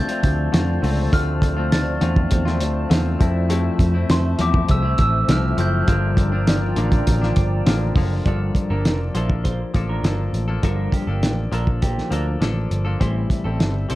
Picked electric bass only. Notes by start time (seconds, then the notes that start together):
0.23 D2
0.54 F2
0.83 C#2
1.13 D2
2.02 E2
2.32 E2
2.61 D2
2.91 E2
3.21 F2
3.79 F2
4.10 F2
4.39 E2
4.69 C2
4.99 A1
5.28 C2
5.58 F#1
5.88 G1
6.77 A1
7.07 A1
7.37 G1
7.67 A1
7.96 F#1
8.26 G1
8.70 G1
8.85 F1
9.15 A#1
9.75 A1
10.03 G1
10.33 A1
10.63 G1
11.07 G1
11.22 A1
11.52 A#1
12.11 D2
12.41 A1
12.71 G1
13.01 A1
13.45 A1
13.61 G1
13.91 C2